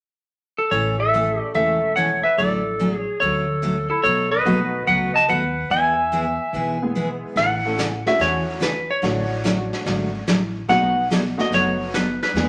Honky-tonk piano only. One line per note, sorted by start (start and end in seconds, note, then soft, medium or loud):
1.13 1.53 A3 medium
1.13 1.53 C#4 medium
1.13 1.53 E4 soft
1.13 1.53 A4 medium
1.55 2.19 A3 medium
1.55 2.19 C#4 soft
1.55 2.19 E4 soft
1.55 2.19 A4 medium
4.45 5.09 A3 medium
4.45 5.09 B3 medium
4.45 5.09 D#4 medium
4.45 5.09 F#4 medium
6.82 7.35 G#3 medium
6.82 7.34 B3 medium
6.82 7.35 E4 medium
6.82 7.35 G#4 medium
7.65 7.77 A3 medium
7.65 7.78 C#4 medium
7.65 7.78 E4 medium
7.65 7.78 A4 medium
8.06 8.59 A3 medium
8.06 8.59 C#4 medium
8.06 8.59 E4 medium
8.06 8.59 F#4 medium
9.03 10.19 A3 medium
9.03 10.19 C#4 medium
9.03 10.19 D4 medium
9.03 10.19 F#4 medium
10.68 10.94 A3 medium
10.68 10.94 B3 medium
10.68 10.94 D#4 medium
10.68 10.94 F#4 medium
11.37 11.90 A3 medium
11.37 11.90 B3 medium
11.37 11.90 D#4 medium
11.37 11.91 F#4 medium
12.36 12.49 G#3 medium
12.36 12.49 B3 soft
12.36 12.49 E4 soft
12.36 12.49 G#4 medium